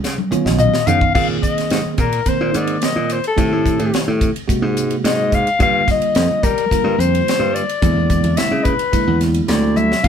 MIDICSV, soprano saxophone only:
0, 0, Header, 1, 2, 480
1, 0, Start_track
1, 0, Tempo, 555556
1, 996, Time_signature, 4, 2, 24, 8
1, 8709, End_track
2, 0, Start_track
2, 0, Title_t, "Soprano saxophone"
2, 0, Program_c, 0, 64
2, 511, Note_on_c, 0, 75, 87
2, 750, Note_on_c, 0, 77, 92
2, 763, Note_off_c, 0, 75, 0
2, 985, Note_off_c, 0, 77, 0
2, 990, Note_on_c, 0, 77, 88
2, 1100, Note_off_c, 0, 77, 0
2, 1231, Note_on_c, 0, 75, 80
2, 1680, Note_off_c, 0, 75, 0
2, 1728, Note_on_c, 0, 70, 72
2, 1976, Note_on_c, 0, 72, 81
2, 1988, Note_off_c, 0, 70, 0
2, 2217, Note_on_c, 0, 74, 66
2, 2230, Note_off_c, 0, 72, 0
2, 2454, Note_on_c, 0, 75, 61
2, 2467, Note_off_c, 0, 74, 0
2, 2698, Note_on_c, 0, 72, 66
2, 2711, Note_off_c, 0, 75, 0
2, 2809, Note_off_c, 0, 72, 0
2, 2830, Note_on_c, 0, 69, 67
2, 3500, Note_off_c, 0, 69, 0
2, 4368, Note_on_c, 0, 75, 80
2, 4619, Note_on_c, 0, 77, 90
2, 4632, Note_off_c, 0, 75, 0
2, 4849, Note_off_c, 0, 77, 0
2, 4859, Note_on_c, 0, 77, 101
2, 5073, Note_off_c, 0, 77, 0
2, 5105, Note_on_c, 0, 75, 94
2, 5564, Note_on_c, 0, 70, 86
2, 5577, Note_off_c, 0, 75, 0
2, 6044, Note_on_c, 0, 72, 75
2, 6057, Note_off_c, 0, 70, 0
2, 6517, Note_on_c, 0, 74, 92
2, 6530, Note_off_c, 0, 72, 0
2, 7230, Note_on_c, 0, 76, 79
2, 7243, Note_off_c, 0, 74, 0
2, 7460, Note_on_c, 0, 71, 65
2, 7473, Note_off_c, 0, 76, 0
2, 7955, Note_off_c, 0, 71, 0
2, 8197, Note_on_c, 0, 74, 71
2, 8436, Note_on_c, 0, 76, 87
2, 8449, Note_off_c, 0, 74, 0
2, 8672, Note_on_c, 0, 77, 95
2, 8685, Note_off_c, 0, 76, 0
2, 8709, Note_off_c, 0, 77, 0
2, 8709, End_track
0, 0, End_of_file